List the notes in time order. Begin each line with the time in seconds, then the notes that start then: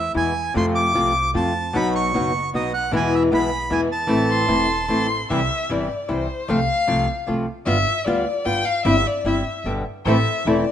Already playing: E2 A3 C4 E4 E5
0.13 E2 B2 E3 G#3 B3 E4 G#5
0.54 F2 C3 F3 A3 C4 F4 C6
0.75 D6
0.94 C2 C3 F3 A3 C4 F4
1.34 F2 C3 F3 A3 C4 F4 A5
1.73 B1 B2 F#3 B3 D#4 F#4 B5
1.95 C#6
2.13 F#1 B2 F#3 B3 D#4 F#4
2.53 B1 B2 F#3 B3 D#4 F#4 D#5
2.74 F#5
2.91 E2 B2 E3 G#3 B3 E4 G#4
2.96 G#5
3.15 E5
3.31 B1 B2 E3 G#3 B3 E4 G#4 B5
3.70 E2 B2 E3 G#3 B3 E4 G#4 G#5
3.92 A5
4.07 A1 E3 A3 C4 E4 A4
4.30 C6
4.48 E1 E3 A3 C4 E4 A4
4.88 A1 E3 A3 C4 E4 A4 C6
5.30 C2 C3 E3 G3 C4 E4 E5
5.69 G1 C3 E3 G3 C4 E4 D5
6.08 C2 C3 E3 G3 C4 E4 C5
6.48 C2 C3 F3 A3 C4 F4 F5
6.87 C2 C3 F3 A3 C4 F4
7.27 C2 C3 F3 A3 C4 F4
7.66 G1 G3 B3 F4 E5
8.05 D2 G3 B3 F4 D5
8.45 G1 G3 B3 F4 G5
8.65 F5
8.85 G1 G3 C4 E4 E5
9.07 D5
9.24 G1 G3 C4 E4 E5
9.64 G1 B2 D3 G3 B3 G4
10.05 A1 E3 A3 C4 E4 A4 E5
10.45 E1 E3 A3 C4 E4 A4 D5